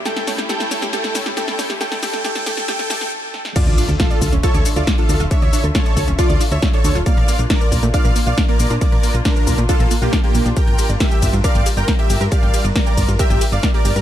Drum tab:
CC |----------------|----------------|x---------------|----------------|
RD |----------------|----------------|----------------|----------------|
HH |xxoxxxoxxxoxxxox|xxo-xxoxxxox----|xxoxxxoxxxoxxxox|xxoxxxoxxxoxxxox|
SH |x-xxxxxxxxxxx-xx|xxxxxxxxxxxx----|x-xxxxxxxxxxx-xx|x-xxxxxxxxxxx-xx|
SD |oooooooooooooooo|oooooooooooo--oo|----o-------o---|----o-------o---|
BD |----------------|----------------|o---o-o-o---o---|o---o-o-o---o---|

CC |----------------|----------------|----------------|----------------|
RD |----------------|----------------|x-x-x-x-x-x-x-x-|x-x-x-x-x-x-x-x-|
HH |xxoxxxoxxxoxxxox|xxoxxxoxxxoxxxox|xxoxxxoxxxoxxxox|xxoxxxoxxxoxxxox|
SH |x-xxxxxxxxxxx-xx|x-xxxxxxxxxxx-xx|x-xxxxxxxxxxx-xx|x-xxxxxxxxxxx-xx|
SD |----o-------o---|----o-------o---|----o-------o---|----o-------o---|
BD |o---o-o-o---o---|o---o-o-o---o---|o---o-o-o---o---|o---o-o-o---o---|